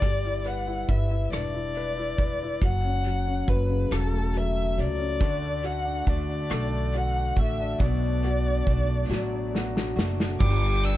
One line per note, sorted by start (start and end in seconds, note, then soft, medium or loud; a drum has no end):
0.00 0.84 G1 medium
0.00 2.58 G3 medium
0.00 0.48 D5 loud
0.00 kick medium
0.00 closed hi-hat medium
0.25 0.66 E4 soft
0.45 0.88 B4 soft
0.45 0.91 F#5 medium
0.45 closed hi-hat soft
0.67 1.10 E4 soft
0.88 1.29 G1 medium
0.88 1.76 B4 soft
0.88 1.32 E5 medium
0.88 kick medium
0.88 closed hi-hat soft
1.11 1.53 E4 soft
1.32 2.14 E1 medium
1.32 2.58 D4 medium
1.32 2.65 D5 medium
1.32 cross-stick medium
1.32 closed hi-hat medium
1.55 1.96 E4 soft
1.75 2.19 B4 soft
1.75 closed hi-hat soft
1.98 2.41 E4 soft
2.18 2.59 E1 medium
2.18 2.61 B4 soft
2.18 kick medium
2.18 closed hi-hat soft
2.43 2.62 E4 soft
2.62 3.44 F#1 medium
2.62 3.05 F#3 medium
2.62 3.50 F#5 medium
2.62 kick medium
2.62 closed hi-hat medium
2.85 3.26 C#4 soft
3.04 3.48 F#3 medium
3.04 closed hi-hat soft
3.27 4.96 C#4 soft
3.48 3.88 F#1 medium
3.48 3.90 F#3 soft
3.48 3.93 B4 medium
3.48 kick medium
3.48 closed hi-hat soft
3.70 5.17 C#3 soft
3.91 4.79 E1 medium
3.91 4.33 F#3 medium
3.91 4.39 A4 medium
3.91 cross-stick loud
3.91 closed hi-hat medium
4.14 5.18 A3 soft
4.33 4.77 F#3 medium
4.33 4.81 E5 medium
4.33 closed hi-hat soft
4.78 5.18 C#2 medium
4.78 5.20 F#3 soft
4.78 5.67 D5 medium
4.78 closed hi-hat soft
4.99 5.20 C#4 soft
5.20 6.03 D2 medium
5.20 6.06 D3 medium
5.20 7.76 D3 medium
5.20 6.06 A3 medium
5.20 6.07 D4 medium
5.20 6.08 F#4 medium
5.20 kick medium
5.20 closed hi-hat medium
5.42 5.84 D4 soft
5.63 6.06 F#4 medium
5.63 6.11 F#5 medium
5.63 closed hi-hat soft
5.85 6.28 D4 medium
6.06 6.48 D2 medium
6.06 6.50 D3 soft
6.06 6.49 A3 medium
6.06 6.49 D4 medium
6.06 6.93 F#4 soft
6.06 6.48 F#4 medium
6.06 6.98 D5 medium
6.06 kick medium
6.06 closed hi-hat soft
6.29 6.71 D4 soft
6.50 7.33 B1 medium
6.50 7.80 D3 soft
6.50 7.37 A3 medium
6.50 7.77 A3 medium
6.50 7.37 D4 medium
6.50 7.36 F#4 medium
6.50 cross-stick medium
6.50 closed hi-hat medium
6.73 7.15 D4 soft
6.92 7.37 F#4 medium
6.92 7.40 F#5 medium
6.92 closed hi-hat soft
7.16 7.59 D4 soft
7.36 7.78 A1 medium
7.36 7.80 A3 soft
7.36 7.80 D4 soft
7.36 7.80 F#4 soft
7.36 7.81 E5 medium
7.36 kick medium
7.36 closed hi-hat soft
7.61 7.81 D4 soft
7.80 8.63 B1 medium
7.80 8.67 B2 medium
7.80 10.37 B2 medium
7.80 8.65 F#3 medium
7.80 8.66 A3 medium
7.80 8.67 D4 medium
7.80 8.67 F#4 medium
7.80 9.50 D5 medium
7.80 kick loud
7.80 closed hi-hat medium
8.04 8.45 D4 soft
8.23 8.66 F#4 medium
8.23 closed hi-hat soft
8.46 8.88 D4 medium
8.66 9.08 B1 medium
8.66 9.10 F#3 soft
8.66 9.09 A3 soft
8.66 9.09 D4 medium
8.66 9.09 F#4 medium
8.66 kick medium
8.66 closed hi-hat soft
8.89 9.32 D4 soft
9.10 9.92 A1 medium
9.10 9.97 B2 medium
9.10 10.36 F#3 medium
9.10 9.97 F#3 medium
9.10 9.97 A3 medium
9.10 9.96 D4 medium
9.10 9.95 F#4 medium
9.10 snare soft
9.33 9.74 D4 medium
9.54 9.96 F#4 medium
9.54 snare medium
9.76 10.18 D4 medium
9.76 snare medium
9.96 10.37 F#1 medium
9.96 10.40 A3 soft
9.96 10.39 D4 soft
9.96 10.40 F#4 medium
9.96 10.39 F#4 medium
9.96 snare medium
10.20 10.40 D4 soft
10.20 snare medium
10.40 10.97 G1 loud
10.40 10.61 G2 medium
10.40 10.61 D3 medium
10.40 10.62 G3 medium
10.40 10.97 G3 medium
10.40 10.62 B3 medium
10.40 10.62 D4 medium
10.40 10.61 G4 medium
10.40 10.97 G5 loud
10.40 10.86 D6 medium
10.40 kick loud
10.40 crash loud
10.62 10.97 G3 soft
10.62 10.97 B3 soft
10.62 10.97 D4 soft
10.62 10.97 G4 medium
10.83 10.97 D4 medium
10.83 10.97 E6 loud
10.83 ride medium